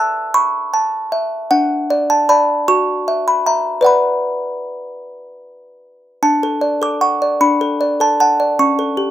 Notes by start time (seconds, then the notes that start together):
Already playing: A4 E5 A5 E6
0.34 B5 C#6
0.74 A5
1.12 E5
1.51 D4 F#5
1.90 D5
2.10 A5
2.29 D5 A5 B5
2.68 F#4 C#6
3.08 E5
3.28 B5
3.46 E5 A#5
3.81 B4 D5 F#5
3.86 B5
6.23 D4 A5
6.43 A4
6.61 D5
6.82 A4 D6
7.01 F#5 C#6
7.22 D5
7.41 D4 B5
7.61 A4
7.81 D5
8.00 A4 A5
8.20 F#5 A5
8.40 D5
8.59 C#4 C#6
8.79 A4
8.97 G4